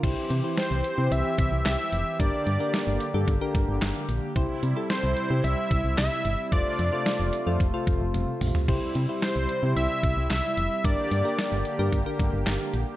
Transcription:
0.03 fm bass C2, analog synth pad E3 C4 G4, synth keys E4 G4 C5, kick, closed hi-hat, crash
0.30 fm bass C3, closed hi-hat
0.44 synth keys E4 G4 C5
0.57 analog synth lead C5, snare, closed hi-hat
0.71 fm bass C2
0.84 closed hi-hat
0.98 fm bass C3, synth keys E4 G4 C5
1.11 fm bass C2, analog synth lead E5, closed hi-hat
1.38 fm bass C2, kick, closed hi-hat
1.52 fm bass C2
1.66 fm bass C2, analog synth lead E5, snare, clap, closed hi-hat
1.92 fm bass F1, closed hi-hat
2.20 fm bass G1, analog synth pad D3 A#3, synth keys D4 G4 A#4, analog synth lead D5, kick, closed hi-hat
2.47 fm bass G2, closed hi-hat
2.60 synth keys D4 G4 A#4
2.74 snare, closed hi-hat
2.87 fm bass G1
3.00 closed hi-hat
3.14 fm bass G2, synth keys D4 G4 A4
3.28 fm bass G1, kick, closed hi-hat
3.41 synth keys D4 G4 A#4
3.55 fm bass G1, kick, closed hi-hat
3.68 fm bass G1
3.82 fm bass G1, snare, clap, closed hi-hat
4.09 fm bass A#1, closed hi-hat
4.36 fm bass C2, analog synth pad C3 G3 E4, synth keys E4 G4 C5, kick, closed hi-hat
4.63 fm bass C3, closed hi-hat
4.76 synth keys E4 G4 A4
4.90 analog synth lead C5, snare, closed hi-hat
5.03 fm bass C2
5.17 closed hi-hat
5.30 fm bass C3, synth keys E4 G4 C5
5.44 fm bass C2, analog synth lead E5, closed hi-hat
5.71 fm bass C2, kick, closed hi-hat
5.85 fm bass C2
5.98 fm bass C2, analog synth lead E5, snare, clap, closed hi-hat
6.25 fm bass G1, closed hi-hat
6.52 fm bass F1, analog synth pad A3 F4, synth keys F4 A4 C5, analog synth lead D5, kick, closed hi-hat
6.79 fm bass F2, closed hi-hat
6.93 synth keys F4 A4 C5
7.06 snare, closed hi-hat
7.20 fm bass F1
7.33 closed hi-hat
7.47 fm bass F2, synth keys F4 A4 C5
7.60 fm bass F1, kick, closed hi-hat
7.74 synth keys F4 A4 C5
7.87 fm bass F1, kick, closed hi-hat
8.01 fm bass F1
8.14 fm bass F1, closed hi-hat, high tom
8.41 fm bass A#1, mid tom, open hi-hat
8.55 floor tom
8.68 fm bass C2, analog synth pad G3 E4, synth keys E4 G4 C5, kick, crash
8.95 fm bass C3, closed hi-hat
9.09 synth keys E4 G4 C5
9.22 analog synth lead C5, snare, closed hi-hat
9.36 fm bass C2
9.49 closed hi-hat
9.63 fm bass C3, synth keys E4 G4 C5
9.76 fm bass C2, analog synth lead E5, closed hi-hat
10.03 fm bass C2, kick, closed hi-hat
10.17 fm bass C2
10.30 fm bass C2, analog synth lead E5, snare, clap, closed hi-hat
10.57 fm bass F1, closed hi-hat
10.84 fm bass G1, analog synth pad D3 A#3 G4, synth keys D4 G4 A#4, analog synth lead D5, kick, closed hi-hat
11.11 fm bass G2, closed hi-hat
11.25 synth keys D4 G4 A#4
11.39 snare, closed hi-hat
11.52 fm bass G1
11.65 closed hi-hat
11.79 fm bass G2, synth keys D4 G4 A#4
11.92 fm bass G1, kick, closed hi-hat
12.06 synth keys D4 G4 A#4
12.20 fm bass G1, kick, closed hi-hat
12.33 fm bass G1
12.47 fm bass G1, snare, clap, closed hi-hat
12.74 fm bass A#1, closed hi-hat

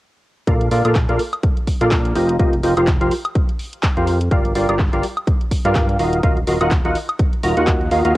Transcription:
0.47 analog synth bass A#1, synth stab A#3 F4 A4 A#4 D5 F5, kick, closed hi-hat
0.61 closed hi-hat
0.71 analog synth bass A#1, synth stab A#3 F4 A4 A#4 D5 F5, open hi-hat
0.85 analog synth bass A#1, synth stab A#3 F4 A4 A#4 D5 F5, closed hi-hat, high woodblock
0.95 kick, clap, closed hi-hat
1.09 analog synth bass A#1, synth stab A#3 F4 A4 A#4 D5 F5, closed hi-hat
1.19 open hi-hat
1.33 closed hi-hat, high woodblock
1.43 kick, closed hi-hat
1.57 closed hi-hat
1.67 kick, open hi-hat
1.81 analog synth bass A#1, synth stab A#3 F4 A4 A#4 D5 F5, closed hi-hat
1.91 kick, clap, closed hi-hat
2.05 closed hi-hat
2.15 analog synth bass F1, synth stab F3 F4 G4 A#4 C5 D#5, open hi-hat
2.29 closed hi-hat
2.39 analog synth bass F1, synth stab F3 F4 G4 A#4 C5 D#5, kick, closed hi-hat
2.53 closed hi-hat
2.63 analog synth bass F1, synth stab F3 F4 G4 A#4 C5 D#5, open hi-hat
2.77 analog synth bass F1, synth stab F3 F4 G4 A#4 C5 F5, closed hi-hat, high woodblock
2.87 kick, clap, closed hi-hat
3.01 analog synth bass F1, synth stab F3 F4 G4 A#4 C5 F5, closed hi-hat
3.11 open hi-hat
3.25 closed hi-hat, high woodblock
3.35 kick, closed hi-hat
3.49 closed hi-hat
3.59 open hi-hat
3.73 closed hi-hat
3.83 kick, clap, closed hi-hat
3.97 analog synth bass F2, synth stab F3 F4 G4 A#4 C5 F5, closed hi-hat
4.07 open hi-hat
4.21 closed hi-hat
4.31 analog synth bass G1, synth stab G3 F4 G4 A#4 D5 F5, kick, closed hi-hat
4.45 closed hi-hat
4.55 analog synth bass G1, synth stab G3 F4 G4 A#4 D5 F5, open hi-hat
4.69 analog synth bass G1, synth stab G3 F4 G4 A#4 D5 F5, closed hi-hat, high woodblock
4.79 kick, clap, closed hi-hat
4.93 analog synth bass G1, synth stab G3 F4 G4 A#4 D5 F5, closed hi-hat
5.03 open hi-hat
5.17 closed hi-hat, high woodblock
5.27 kick, closed hi-hat
5.41 closed hi-hat
5.51 kick, open hi-hat
5.65 analog synth bass G2, synth stab G3 F4 G4 A#4 D5 F5, closed hi-hat
5.75 kick, clap, closed hi-hat
5.89 closed hi-hat
5.99 analog synth bass D#1, synth stab D#3 F4 F#4 A#4 D#5 F5, open hi-hat
6.13 closed hi-hat
6.23 analog synth bass D#1, synth stab D#3 F4 F#4 A#4 D#5 F5, kick, closed hi-hat
6.37 closed hi-hat
6.47 analog synth bass D#1, synth stab D#3 F4 F#4 A#4 D#5 F5, open hi-hat
6.61 analog synth bass D#1, synth stab D#3 F4 F#4 A#4 D#5 F#5, closed hi-hat, high woodblock
6.71 kick, clap, closed hi-hat
6.85 analog synth bass D#1, synth stab D#3 F4 F#4 A#4 D#5 F#5, closed hi-hat
6.95 open hi-hat
7.09 closed hi-hat, high woodblock
7.19 kick, closed hi-hat
7.33 closed hi-hat
7.43 analog synth bass D#1, synth stab D#3 F4 F#4 A#4 D#5 A#5, open hi-hat
7.57 analog synth bass D#2, synth stab D#3 F4 F#4 A#4 D#5 F#5, closed hi-hat
7.67 kick, clap, closed hi-hat
7.81 closed hi-hat
7.91 analog synth bass D#2, synth stab A#3 F4 F#4 A#4 D#5 F5, open hi-hat
8.05 analog synth bass D#2, synth stab A#3 F4 F#4 A#4 D#5 F5, closed hi-hat

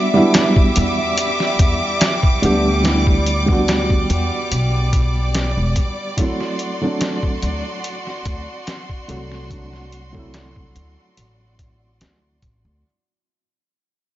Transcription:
Already playing: felt piano G3 B3 D4 F#4, violin section G3 E5 D6
0.14 felt piano G3 B3 D4 E4
0.34 snare, closed hi-hat
0.56 kick
0.76 upright bass E2, closed hi-hat
1.18 closed hi-hat
1.40 snare
1.59 upright bass E2, kick, closed hi-hat
2.01 snare, closed hi-hat
2.23 kick
2.42 upright bass D2, felt piano G3 B3 D4 G4, closed hi-hat
2.84 felt piano G3 B3 D4 E4, violin section D5, snare, closed hi-hat
3.07 kick
3.26 closed hi-hat
3.46 felt piano G3 B3, kick
3.50 felt piano D4 F#4
3.68 snare, closed hi-hat
3.90 kick
4.10 upright bass E2, closed hi-hat
4.52 upright bass B1, closed hi-hat
4.93 kick, closed hi-hat
5.34 snare, closed hi-hat
5.57 upright bass E1
5.76 kick, closed hi-hat
6.17 felt piano F#3 A3 C4 E4, violin section F#4 C6, kick, closed hi-hat
6.41 snare
6.59 closed hi-hat
6.81 felt piano F#3 A3 C4 D4
7.01 snare, closed hi-hat
7.23 kick
7.42 upright bass D2, closed hi-hat
7.84 closed hi-hat
8.07 snare
8.25 upright bass D2, kick, closed hi-hat
8.67 snare, closed hi-hat
8.90 kick
9.08 upright bass C2, felt piano F#3 A3 C4 F#4, closed hi-hat
9.32 snare
9.50 felt piano F#3 A3 C4 D4, kick, closed hi-hat
9.73 snare
9.92 closed hi-hat
10.13 felt piano F#3 A3, kick
10.17 felt piano C4 E4
10.34 snare, closed hi-hat
10.56 kick
10.76 upright bass D2, closed hi-hat
11.17 upright bass A1, closed hi-hat
11.59 kick, closed hi-hat
12.01 upright bass D2, snare, closed hi-hat
12.42 upright bass A1, kick, closed hi-hat
12.65 upright bass D2

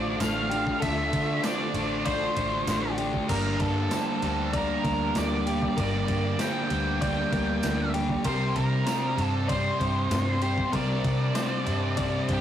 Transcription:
Already playing: fingered electric bass A1, distorted electric guitar D3 A3 D4, overdriven electric guitar D3 A3 D4 F4, string machine F4 A4 D5 C6, clean electric guitar A4 C5, lead electric guitar D5
0.20 fingered electric bass A1, distorted electric guitar D3 A3 D4, lead electric guitar F5, snare, ride, tambourine
0.49 distorted electric guitar D4, clean electric guitar G4, ride
0.54 distorted electric guitar A3
0.67 kick
0.80 fingered electric bass D2, distorted electric guitar D3 A3, overdriven electric guitar D3 A3, clean electric guitar A4, lead electric guitar E5, kick, ride
0.84 distorted electric guitar D4, overdriven electric guitar D4 F4
1.13 fingered electric bass D3, distorted electric guitar A3 D4, kick, ride
1.43 distorted electric guitar D3 A3 D4, clean electric guitar C5, lead electric guitar D5, snare, ride, tambourine
1.74 fingered electric bass A1, distorted electric guitar A3 D4, overdriven electric guitar A3 D4 F4, ride
1.78 overdriven electric guitar D3
2.05 distorted electric guitar D3 A3 D4, lead electric guitar C5, clean electric guitar D5, kick, ride
2.36 fingered electric bass A1, distorted electric guitar A3 D4, clean electric guitar C5, kick, ride
2.67 fingered electric bass A1, distorted electric guitar D3 A3 D4, snare, ride, tambourine
2.98 distorted electric guitar A3 D4, clean electric guitar G4, ride
3.14 kick
3.28 fingered electric bass G1, overdriven electric guitar G2 D3 G3 A#3 D4, distorted electric guitar G2 D3, clean electric guitar A#3, string machine A#3 G5 D6, lead electric guitar A#4, kick, crash
3.32 distorted electric guitar G3, overdriven electric guitar G4
3.45 snare
3.60 fingered electric bass G2, distorted electric guitar D3 G3, lead electric guitar A4, kick, ride
3.91 distorted electric guitar G2 D3 G3, clean electric guitar C5, snare, ride, tambourine
4.22 fingered electric bass D2, overdriven electric guitar D3 G3 A#3 D4 G4, distorted electric guitar D3 G3, ride
4.26 overdriven electric guitar G2
4.53 distorted electric guitar G2 D3 G3, lead electric guitar A#4, clean electric guitar D5, kick, ride
4.84 fingered electric bass D2, distorted electric guitar D3 G3, clean electric guitar A#4, kick, snare, ride
5.15 fingered electric bass D2, distorted electric guitar G2 D3 G3, lead electric guitar D5, snare, ride, tambourine
5.46 distorted electric guitar D3 G3, clean electric guitar G4, ride
5.62 kick
5.76 fingered electric bass G1, overdriven electric guitar G2 D3 G3 A#3 D4, distorted electric guitar G2 D3, clean electric guitar A#4, lead electric guitar D5, kick, ride
5.80 distorted electric guitar G3, overdriven electric guitar G4
5.94 snare
6.08 fingered electric bass G2, distorted electric guitar D3 G3, kick, ride
6.39 distorted electric guitar G2 D3 G3, clean electric guitar C5, lead electric guitar G5, snare, ride, tambourine
6.70 fingered electric bass D2, overdriven electric guitar G2 D3 G3 A#3 D4 G4, distorted electric guitar D3 G3, ride
7.01 distorted electric guitar G2 D3 G3, clean electric guitar D5, lead electric guitar G5, kick, ride
7.32 fingered electric bass D2, distorted electric guitar D3 G3, clean electric guitar A#4, kick, ride
7.63 fingered electric bass D2, distorted electric guitar G2 D3 G3, snare, ride, tambourine
7.94 distorted electric guitar D3 G3, clean electric guitar G4, ride
8.09 kick
8.24 fingered electric bass C2, overdriven electric guitar C3 G3 C4 D4 G4, distorted electric guitar C3 G3 C4, clean electric guitar A#4, lead electric guitar C5, string machine C5 D5, kick, ride
8.56 fingered electric bass C3, distorted electric guitar G3 C4, lead electric guitar A#4, kick, ride
8.86 distorted electric guitar C3 G3 C4, clean electric guitar C5, snare, ride, tambourine
9.16 fingered electric bass G2, overdriven electric guitar C3 G3 C4 D4 G4, distorted electric guitar C4, ride
9.22 distorted electric guitar G3, lead electric guitar A4
9.48 distorted electric guitar C3 G3, lead electric guitar C5, clean electric guitar D5, kick, ride
9.53 distorted electric guitar C4
9.79 fingered electric bass G2, distorted electric guitar C4, clean electric guitar C5, kick, ride
9.84 distorted electric guitar G3
10.10 fingered electric bass G2, distorted electric guitar C3 G3 C4, snare, ride, tambourine
10.42 distorted electric guitar G3 C4, clean electric guitar G4, lead electric guitar C5, ride
10.58 kick
10.72 fingered electric bass C2, overdriven electric guitar C3 G3 C4 D4 G4, distorted electric guitar C3 G3 C4, clean electric guitar A#4, lead electric guitar D5, string machine A5, kick, ride
10.89 snare
11.04 fingered electric bass C3, distorted electric guitar G3 C4, kick, ride
11.35 distorted electric guitar C3 G3 C4, clean electric guitar C5, snare, ride, tambourine
11.64 fingered electric bass G2, overdriven electric guitar G3 C4 D4 G4, distorted electric guitar G3 C4, ride
11.69 overdriven electric guitar C3
11.97 distorted electric guitar C3 G3 C4, clean electric guitar D5, kick, ride
12.28 fingered electric bass G2, distorted electric guitar G3 C4, clean electric guitar C5, kick, snare, ride
12.33 lead electric guitar G4

